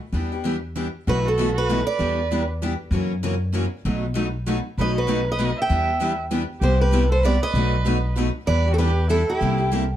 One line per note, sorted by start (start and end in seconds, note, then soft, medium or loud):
0.13 0.87 E2 medium
0.13 0.34 E3 medium
0.13 0.33 G3 medium
0.13 0.31 B3 medium
0.13 0.34 D4 medium
0.13 0.33 E4 medium
0.13 0.31 G4 medium
0.13 0.34 B4 medium
0.32 0.43 B3 soft
0.32 0.44 D4 soft
0.32 0.44 G4 soft
0.44 0.56 E3 medium
0.44 0.56 G3 medium
0.44 0.55 B3 medium
0.44 0.56 D4 medium
0.44 0.56 E4 medium
0.44 0.56 G4 medium
0.44 0.56 B4 medium
0.76 0.86 E3 medium
0.76 0.86 G3 medium
0.76 0.87 B3 medium
0.76 0.86 D4 medium
0.76 0.87 E4 medium
0.76 0.87 G4 medium
0.76 0.87 B4 medium
1.07 1.81 B1 medium
1.07 1.27 B2 medium
1.07 1.26 E3 medium
1.07 1.27 A3 medium
1.07 1.27 E4 medium
1.07 1.27 F#4 medium
1.07 1.24 F#4 medium
1.07 1.27 B4 medium
1.25 1.53 F#4 medium
1.25 1.55 A4 medium
1.39 1.49 B2 medium
1.39 1.49 E3 medium
1.39 1.49 A3 medium
1.39 1.49 E4 medium
1.39 1.49 F#4 medium
1.39 1.49 B4 medium
1.53 1.83 F#4 medium
1.58 1.86 B4 medium
1.69 1.79 B2 medium
1.69 1.80 E3 medium
1.69 1.80 A3 medium
1.69 1.80 E4 loud
1.69 1.80 F#4 medium
1.69 1.80 B4 medium
1.84 2.43 B4 medium
1.84 2.45 D5 medium
1.99 2.74 E2 medium
1.99 2.19 E3 medium
1.99 2.19 G3 medium
1.99 2.19 B3 medium
1.99 2.19 D4 medium
1.99 2.19 E4 medium
1.99 2.20 G4 medium
1.99 2.19 B4 medium
2.31 2.41 E3 medium
2.31 2.42 G3 medium
2.31 2.42 B3 medium
2.31 2.42 D4 medium
2.31 2.42 E4 medium
2.31 2.42 G4 medium
2.31 2.42 B4 medium
2.62 2.72 E3 loud
2.62 2.72 G3 medium
2.62 2.73 B3 medium
2.62 2.73 D4 medium
2.62 2.73 E4 medium
2.62 2.73 G4 loud
2.62 2.73 B4 loud
2.91 3.65 F#2 medium
2.91 3.11 C#3 medium
2.91 3.12 E3 medium
2.91 3.12 F#3 medium
2.91 3.12 A#3 medium
2.91 3.13 C#4 medium
2.91 3.13 E4 medium
2.91 3.12 F#4 medium
2.91 3.13 A#4 medium
3.23 3.34 C#3 medium
3.23 3.34 E3 medium
3.23 3.34 F#3 medium
3.23 3.34 A#3 medium
3.23 3.34 C#4 medium
3.23 3.34 E4 medium
3.23 3.34 F#4 medium
3.23 3.34 A#4 medium
3.52 3.64 C#3 medium
3.52 3.65 E3 medium
3.52 3.64 F#3 medium
3.52 3.65 A#3 medium
3.52 3.64 C#4 medium
3.52 3.64 E4 medium
3.52 3.65 F#4 medium
3.52 3.64 A#4 loud
3.85 4.59 B1 medium
3.85 4.05 B2 medium
3.85 4.05 F#3 medium
3.85 4.05 A3 medium
3.85 4.05 D#4 medium
3.85 4.05 F#4 medium
3.85 4.05 B4 medium
4.15 4.26 B2 medium
4.15 4.26 F#3 medium
4.15 4.27 A3 medium
4.15 4.26 D#4 medium
4.15 4.26 F#4 medium
4.15 4.27 B4 medium
4.47 4.57 B2 medium
4.47 4.58 F#3 medium
4.47 4.57 A3 medium
4.47 4.58 D#4 medium
4.47 4.58 F#4 medium
4.47 4.58 B4 loud
4.77 5.52 B1 medium
4.77 4.98 B2 medium
4.77 4.98 F#3 medium
4.77 4.98 A3 medium
4.77 4.98 D#4 medium
4.77 4.98 F#4 medium
4.77 4.95 B4 medium
4.77 4.98 B4 medium
4.77 4.98 D#5 medium
4.98 5.26 F#4 medium
4.98 5.29 B4 medium
5.08 5.19 B2 medium
5.08 5.19 F#3 medium
5.08 5.19 A3 loud
5.08 5.19 D#4 medium
5.08 5.19 F#4 medium
5.08 5.20 B4 medium
5.28 5.56 B4 medium
5.28 5.61 D#5 medium
5.39 5.50 B2 medium
5.39 5.50 F#3 medium
5.39 5.50 A3 loud
5.39 5.50 D#4 medium
5.39 5.50 F#4 medium
5.39 5.50 B4 medium
5.60 6.17 E5 medium
5.60 6.17 G5 medium
5.69 6.44 E2 medium
5.69 5.89 E3 medium
5.69 5.90 G3 medium
5.69 5.89 B3 medium
5.69 5.90 D4 medium
5.69 5.90 E4 medium
5.69 5.90 G4 medium
5.69 5.90 B4 medium
6.00 6.11 E3 medium
6.00 6.11 G3 medium
6.00 6.11 B3 medium
6.00 6.11 D4 medium
6.00 6.12 E4 medium
6.00 6.12 G4 loud
6.00 6.12 B4 medium
6.31 6.42 E3 medium
6.31 6.42 G3 medium
6.31 6.42 B3 medium
6.31 6.42 D4 medium
6.31 6.42 E4 medium
6.31 6.42 G4 medium
6.31 6.42 B4 loud
6.61 7.36 C2 medium
6.61 6.82 C3 medium
6.61 6.82 G3 medium
6.61 6.83 B3 medium
6.61 6.83 E4 medium
6.61 6.79 G4 medium
6.61 6.83 G4 medium
6.61 6.80 C5 medium
6.80 7.09 G4 medium
6.80 7.10 B4 medium
6.91 7.03 C3 medium
6.91 7.03 G3 medium
6.91 7.03 B3 medium
6.91 7.04 E4 medium
6.91 7.04 G4 loud
7.10 7.23 A4 medium
7.10 7.25 C5 medium
7.24 7.35 C3 medium
7.24 7.35 G3 loud
7.24 7.35 B3 loud
7.24 7.35 E4 medium
7.24 7.35 G4 medium
7.24 7.41 B4 medium
7.24 7.42 D5 medium
7.42 8.13 B4 medium
7.42 8.13 D#5 loud
7.54 8.29 B1 medium
7.54 7.75 B2 medium
7.54 7.75 F#3 medium
7.54 7.75 A3 medium
7.54 7.75 D#4 medium
7.54 7.75 F#4 medium
7.54 7.75 B4 medium
7.85 7.96 B2 medium
7.85 7.96 F#3 medium
7.85 7.97 A3 medium
7.85 7.97 D#4 medium
7.85 7.97 F#4 medium
7.85 7.97 B4 loud
8.16 8.27 B2 medium
8.16 8.27 F#3 medium
8.16 8.27 A3 medium
8.16 8.27 D#4 medium
8.16 8.27 F#4 medium
8.16 8.28 B4 medium
8.46 9.22 E2 medium
8.46 8.67 E3 medium
8.46 8.67 G3 medium
8.46 8.66 B3 medium
8.46 8.67 D4 medium
8.46 8.68 E4 medium
8.46 8.65 G4 medium
8.46 8.71 B4 medium
8.46 8.68 B4 medium
8.46 8.73 D5 medium
8.66 8.78 B3 soft
8.66 8.78 D4 medium
8.66 8.79 G4 soft
8.73 8.79 F#4 soft
8.73 8.78 A4 medium
8.78 8.90 E3 medium
8.78 8.89 G3 medium
8.78 8.90 B3 medium
8.78 8.90 D4 medium
8.78 8.90 E4 medium
8.78 9.08 G4 medium
8.78 8.90 G4 medium
8.78 9.08 B4 medium
8.78 8.90 B4 medium
9.09 9.20 E3 medium
9.09 9.21 G3 medium
9.09 9.21 B3 medium
9.09 9.21 D4 medium
9.09 9.21 E4 medium
9.09 9.27 E4 medium
9.09 9.21 G4 loud
9.09 9.29 A4 medium
9.09 9.21 B4 medium
9.29 9.70 E4 medium
9.29 9.70 G4 medium
9.41 9.97 C2 medium
9.41 9.61 C3 medium
9.41 9.61 G3 medium
9.41 9.61 A#3 medium
9.41 9.61 E4 medium
9.41 9.61 G4 medium
9.58 9.72 A#3 soft
9.58 9.71 E4 soft
9.58 9.71 G4 medium
9.71 9.82 C3 medium
9.71 9.83 G3 medium
9.71 9.83 A#3 medium
9.71 9.83 E4 medium
9.71 9.83 G4 medium